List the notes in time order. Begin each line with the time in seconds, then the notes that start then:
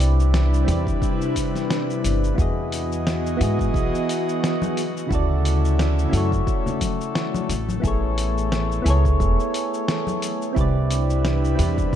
Already playing: C2 C3 G3 C4 D4 E4 G4 B4 D5
0.00 open hi-hat, shaker
0.20 shaker
0.34 snare, shaker
0.54 shaker
0.65 E2 C4 E4 G4, open hi-hat
0.69 B4 D5, shaker
0.87 kick, shaker
1.02 kick, shaker
1.21 shaker
1.36 kick, open hi-hat, shaker
1.56 snare, shaker
1.70 snare, shaker
1.90 shaker
2.04 G1, open hi-hat, shaker
2.24 shaker
2.34 E2 E3 B3 E4 F#4 G#4, kick
2.38 G#4 D#5, shaker
2.72 open hi-hat, shaker
2.92 shaker
3.07 snare, shaker
3.26 shaker
3.37 G#2 B3 E4 F#4
3.41 G#4 D#5, open hi-hat, shaker
3.59 kick, shaker
3.74 B1, kick, shaker
3.95 shaker
4.09 open hi-hat, shaker
4.29 shaker
4.44 snare, shaker
4.62 high conga, shaker
4.77 C#3 A3 E4, open hi-hat, shaker
4.97 shaker
5.07 D2 C#3 E4, kick
5.11 F#4 A4 D5, shaker
5.45 open hi-hat, shaker
5.65 shaker
5.79 snare, shaker
5.99 shaker
6.09 F#2 C#4 E4 F#4
6.13 A4 C#5, open hi-hat, shaker
6.32 kick, shaker
6.47 kick, shaker
6.66 low conga, shaker
6.81 kick, open hi-hat, high conga, shaker
7.01 shaker
7.15 snare, shaker
7.34 high conga, shaker
7.49 A1, open hi-hat, shaker
7.69 high conga, shaker
7.80 A1 B3 E4 G#4, kick
7.84 A4 C#5, shaker
8.18 open hi-hat, shaker
8.38 shaker
8.52 snare, shaker
8.72 shaker
8.82 C#2 B3 E4, open hi-hat
8.86 G#4 A4 C#5, shaker
9.05 kick, shaker
9.20 E1, kick, shaker
9.40 shaker
9.54 open hi-hat, shaker
9.74 shaker
9.88 snare, shaker
10.07 high conga, shaker
10.22 open hi-hat, shaker
10.42 shaker
10.53 C2 C4 E4 B4, kick
10.57 C3 G3 D4 E4 G4 B4 D5, shaker
10.91 open hi-hat, shaker
11.10 shaker
11.25 snare, shaker
11.44 shaker
11.55 E2 C4 E4 G4, open hi-hat
11.59 B4 D5, shaker
11.78 kick, shaker